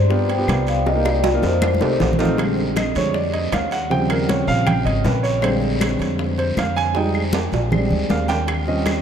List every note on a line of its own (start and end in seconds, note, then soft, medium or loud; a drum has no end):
0.00 0.44 G2 medium
0.00 0.26 D5 medium
0.10 0.30 B3 medium
0.10 0.30 D4 medium
0.10 0.30 F4 medium
0.10 0.30 G4 medium
0.10 high bongo medium
0.10 high conga soft
0.10 long guiro medium
0.29 0.65 G5 medium
0.29 high bongo soft
0.29 high conga soft
0.29 high timbale medium
0.38 0.78 B3 medium
0.38 0.78 D4 medium
0.38 0.78 F4 medium
0.38 0.78 G4 medium
0.48 1.37 C2 medium
0.48 high bongo soft
0.48 low bongo medium
0.48 high conga medium
0.48 high timbale medium
0.48 low timbale medium
0.48 short guiro medium
0.48 claves medium
0.67 0.77 F5 medium
0.67 high bongo soft
0.67 high conga soft
0.67 high timbale medium
0.67 short guiro medium
0.86 1.05 D#5 medium
0.86 high bongo loud
0.86 high conga soft
0.86 high timbale medium
0.86 long guiro medium
0.95 1.22 A#3 medium
0.95 1.22 D4 medium
0.95 1.22 D#4 medium
0.95 1.22 G4 medium
1.05 1.41 D5 medium
1.05 high bongo medium
1.05 high conga soft
1.05 high timbale medium
1.05 claves medium
1.24 high conga medium
1.24 high timbale loud
1.24 short guiro medium
1.33 1.62 A#3 medium
1.33 1.62 D4 medium
1.33 1.62 D#4 medium
1.33 1.63 F4 medium
1.42 1.78 F2 medium
1.42 2.16 C5 medium
1.42 high bongo medium
1.42 high conga soft
1.42 low timbale medium
1.42 short guiro medium
1.61 low bongo medium
1.61 high conga loud
1.61 low timbale medium
1.61 long guiro medium
1.61 claves medium
1.74 high conga medium
1.80 1.99 C2 medium
1.80 2.08 A3 medium
1.80 2.08 C4 medium
1.80 2.08 D#4 medium
1.80 2.08 G4 medium
1.80 low bongo medium
1.80 low timbale medium
2.00 2.90 A#1 medium
2.00 low bongo medium
2.00 low conga medium
2.00 low timbale medium
2.00 short guiro medium
2.13 low conga medium
2.19 2.38 A3 medium
2.19 2.37 C4 medium
2.19 2.38 D#4 medium
2.19 2.38 F4 medium
2.19 low bongo medium
2.19 low timbale medium
2.19 short guiro medium
2.25 low conga medium
2.37 2.63 D3 medium
2.37 2.63 G3 medium
2.37 2.64 G#3 soft
2.37 2.64 C4 medium
2.37 high bongo medium
2.37 high conga soft
2.37 high timbale medium
2.37 long guiro medium
2.37 claves medium
2.57 high bongo soft
2.57 high conga soft
2.76 2.95 D#5 medium
2.76 high bongo medium
2.76 high conga medium
2.76 high timbale medium
2.76 low timbale medium
2.76 short guiro medium
2.76 claves medium
2.95 3.49 F2 medium
2.95 3.13 D3 soft
2.95 3.13 G3 soft
2.95 3.13 G#3 soft
2.95 3.13 C4 soft
2.95 3.15 C#5 medium
2.95 high conga soft
2.95 high timbale medium
2.95 short guiro medium
3.14 3.33 D5 medium
3.14 high bongo medium
3.14 high conga soft
3.14 long guiro medium
3.33 3.52 D#5 medium
3.33 high bongo soft
3.33 high conga soft
3.33 high timbale medium
3.52 4.42 D#2 medium
3.52 3.71 F5 medium
3.52 high bongo soft
3.52 low bongo medium
3.52 high conga medium
3.52 high timbale medium
3.52 low timbale medium
3.52 short guiro medium
3.52 claves medium
3.71 3.90 F#5 medium
3.71 high bongo soft
3.71 high conga soft
3.71 high timbale medium
3.71 short guiro medium
3.90 5.39 C#3 medium
3.90 5.39 F3 medium
3.90 5.39 G3 soft
3.90 5.40 C4 medium
3.90 4.10 G5 medium
3.90 high bongo medium
3.90 high conga soft
3.90 long guiro medium
4.09 4.28 A#4 medium
4.09 high bongo soft
4.09 high conga soft
4.09 high timbale medium
4.09 claves medium
4.29 4.48 C#5 medium
4.29 high bongo medium
4.29 high conga medium
4.29 high timbale medium
4.29 low timbale medium
4.29 short guiro medium
4.47 4.83 A#1 medium
4.47 4.66 F5 medium
4.47 high conga soft
4.47 short guiro medium
4.67 4.85 G5 medium
4.67 high bongo medium
4.67 high conga soft
4.67 low conga medium
4.67 high timbale medium
4.67 long guiro medium
4.67 claves medium
4.85 5.03 G#1 medium
4.85 5.04 D#5 medium
4.85 high bongo soft
4.85 high conga soft
4.85 high timbale medium
5.04 5.94 A#1 medium
5.04 5.23 B4 medium
5.04 high bongo soft
5.04 low bongo medium
5.04 high conga medium
5.04 low timbale medium
5.04 short guiro medium
5.23 5.42 C#5 medium
5.23 high bongo soft
5.23 high conga soft
5.23 high timbale medium
5.23 short guiro medium
5.42 6.91 D3 medium
5.42 6.91 G3 medium
5.42 6.91 G#3 medium
5.42 6.91 C4 medium
5.42 5.54 C5 medium
5.42 high bongo medium
5.42 high conga soft
5.42 high timbale medium
5.42 long guiro medium
5.42 claves medium
5.62 high bongo soft
5.62 high conga soft
5.81 high bongo medium
5.81 high conga medium
5.81 high timbale loud
5.81 low timbale medium
5.81 short guiro medium
5.81 claves medium
5.99 6.53 F2 medium
5.99 high conga soft
5.99 high timbale medium
5.99 short guiro medium
6.19 high bongo medium
6.19 high conga soft
6.19 long guiro medium
6.38 6.57 C5 medium
6.38 high bongo soft
6.38 high conga soft
6.38 high timbale medium
6.57 7.46 F2 medium
6.57 6.76 F5 medium
6.57 high bongo soft
6.57 low bongo medium
6.57 high conga medium
6.57 high timbale medium
6.57 low timbale medium
6.57 short guiro medium
6.57 claves medium
6.76 6.95 G#5 loud
6.76 high bongo soft
6.76 high conga soft
6.76 high timbale medium
6.76 short guiro medium
6.95 7.21 G3 medium
6.95 7.21 G#3 medium
6.95 7.22 D#4 medium
6.95 7.32 G5 medium
6.95 high bongo medium
6.95 high conga soft
6.95 high timbale medium
6.95 long guiro medium
7.14 high bongo soft
7.14 high conga soft
7.14 claves medium
7.33 high bongo medium
7.33 high conga medium
7.33 low timbale medium
7.33 short guiro medium
7.52 7.88 A#1 medium
7.52 high conga soft
7.52 high timbale medium
7.52 short guiro medium
7.71 8.26 G3 medium
7.71 8.27 G#3 soft
7.71 8.27 C4 soft
7.71 8.27 D4 medium
7.71 high bongo medium
7.71 high conga soft
7.71 low conga medium
7.71 long guiro medium
7.71 claves medium
7.91 8.08 D2 medium
7.91 high conga soft
7.91 low conga medium
8.09 8.99 D#2 medium
8.09 8.29 F5 medium
8.09 low bongo medium
8.09 high conga medium
8.09 low timbale medium
8.09 short guiro medium
8.28 8.64 G5 medium
8.28 low bongo medium
8.28 high conga soft
8.28 low timbale loud
8.28 short guiro medium
8.47 high bongo medium
8.47 high conga soft
8.47 high timbale loud
8.47 long guiro medium
8.47 claves medium
8.67 9.02 G3 soft
8.67 9.02 C4 soft
8.67 9.02 C#4 medium
8.67 9.02 F4 soft
8.67 9.02 D#5 medium
8.67 high bongo soft
8.67 high conga soft
8.85 high bongo medium
8.85 high conga medium
8.85 high timbale medium
8.85 low timbale medium
8.85 short guiro medium
8.85 claves medium